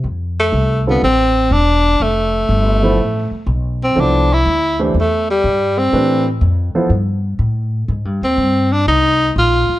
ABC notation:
X:1
M:4/4
L:1/8
Q:"Swing" 1/4=122
K:Flyd
V:1 name="Grand piano"
z3 [D,G,CFA] z4 | z3 [F,B,EAc] z4 | [F,B,EAc] z2 [E,A,DGc] z4 | [E,A,DGB] z2 [F,B,EAc] z4 |
z8 |]
V:2 name="Tenor saxophone"
z A,2 B, C2 D2 | A,6 z C | D E2 z A, G,2 C- | C z6 z |
z C2 D _E2 F2 |]
V:3 name="Upright bass" clef=bass
F,,2 C,,2 A,,,2 E,,,2 | F,,,2 G,,,2 A,,, z B,,,2 | C,,2 D,,2 E,,2 G,,2 | A,,2 F,, z G,,2 A,,2 |
(3_A,, G,, _E,, G,,2 C,,2 _B,,, z |]